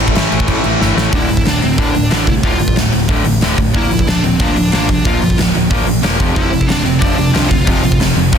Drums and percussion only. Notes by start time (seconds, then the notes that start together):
0.00 crash
0.08 kick
0.15 snare, crash
0.32 crash
0.40 kick
0.48 kick, crash
0.64 crash
0.82 snare
0.98 snare
1.13 kick, open hi-hat
1.29 open hi-hat
1.37 kick
1.45 snare, open hi-hat
1.62 open hi-hat
1.78 kick, open hi-hat
1.95 open hi-hat
2.11 snare, open hi-hat
2.27 kick, open hi-hat
2.43 kick, open hi-hat
2.60 open hi-hat
2.68 kick
2.76 snare, open hi-hat
2.92 open hi-hat
3.09 kick, open hi-hat
3.25 open hi-hat
3.41 snare, open hi-hat
3.58 kick, open hi-hat
3.74 kick, open hi-hat
3.91 open hi-hat
3.99 kick
4.07 snare, open hi-hat
4.24 open hi-hat
4.40 kick, open hi-hat
4.56 open hi-hat
4.72 snare, open hi-hat
4.89 kick, open hi-hat
5.05 kick, open hi-hat
5.22 open hi-hat
5.30 kick
5.38 snare, open hi-hat
5.55 open hi-hat
5.71 kick, open hi-hat
5.87 open hi-hat
6.03 snare, open hi-hat
6.20 kick, open hi-hat
6.36 kick, open hi-hat
6.53 open hi-hat
6.61 kick
6.69 snare, open hi-hat
6.86 open hi-hat
7.02 kick, open hi-hat
7.18 open hi-hat
7.35 snare, open hi-hat
7.51 kick, open hi-hat
7.67 kick, open hi-hat
7.84 open hi-hat
7.92 kick
8.00 snare, open hi-hat
8.16 open hi-hat
8.32 kick, open hi-hat